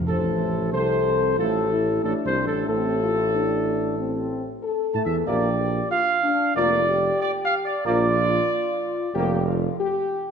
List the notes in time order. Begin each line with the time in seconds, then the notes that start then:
0.07 A1 A2 A4 C5
0.72 C2 C3 A4 C5
1.38 A1 A2 F4 A4
1.70 E4
2.03 A1 A2 D4 A4
2.25 C2 C3 C5
2.46 A1 A2 A4
2.67 A1 A2 C4 A4
3.01 F4
3.34 D4
3.98 C4
4.63 A4
4.94 A2 A3 A5
5.05 E2 E3 E5
5.26 A#1 F3 A#3 G4 D5
5.90 F4 F5
6.23 D4
6.56 F1 F3 A#3 F4 D5
6.88 G4
7.21 D5
7.44 F5
7.65 D5
7.84 A#1 F3 A#3 F4 D5
9.14 F1 F3 A#3 G4
9.46 F4
9.79 G4